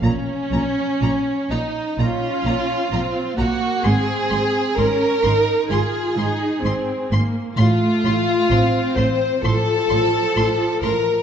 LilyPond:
<<
  \new Staff \with { instrumentName = "Violin section" } { \time 4/4 \key bes \minor \tempo 4 = 64 bes''8 bes''8 bes''8 bes''8 bes''8 bes''8 bes''8 bes''8 | c'''8 c'''8 c'''8 c'''8 c'''8 c'''8 c'''8 c'''8 | c'''8 c'''8 c'''8 c'''8 c'''8 c'''8 c'''8 c'''8 | }
  \new Staff \with { instrumentName = "Violin section" } { \time 4/4 \key bes \minor des'4. ees'8 f'4. ges'8 | aes'4 bes'4 aes'4. r8 | f'4. c''8 a'4. bes'8 | }
  \new Staff \with { instrumentName = "Viola section" } { \time 4/4 \key bes \minor r2 des'4 c'8 bes8 | c'4 des'8 ees'8 f'8 ees'8 c'8 bes8 | a4 c'4 f2 | }
  \new Staff \with { instrumentName = "Cello section" } { \clef bass \time 4/4 \key bes \minor bes,8 bes,8 bes,8 bes,8 bes,8 bes,8 bes,8 bes,8 | aes,8 aes,8 aes,8 aes,8 aes,8 aes,8 aes,8 aes,8 | a,8 a,8 a,8 a,8 a,8 a,8 a,8 a,8 | }
  \new Staff \with { instrumentName = "Double bass section" } { \clef bass \time 4/4 \key bes \minor bes,,8 bes,,8 bes,,8 bes,,8 bes,,8 bes,,8 bes,,8 bes,,8 | aes,,8 aes,,8 aes,,8 aes,,8 aes,,8 aes,,8 aes,,8 aes,,8 | a,,8 a,,8 a,,8 a,,8 a,,8 a,,8 a,,8 a,,8 | }
>>